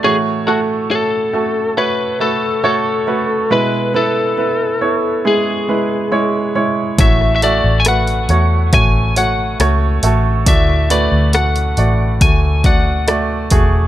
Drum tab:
HH |----------------|----------------|x-x-xxx-x-x-x-x-|x-x-xxx-x-x-x-x-|
SD |----------------|----------------|-r--r-------r---|-r--r-------r---|
BD |----------------|----------------|o-------o-------|o-------o-o---o-|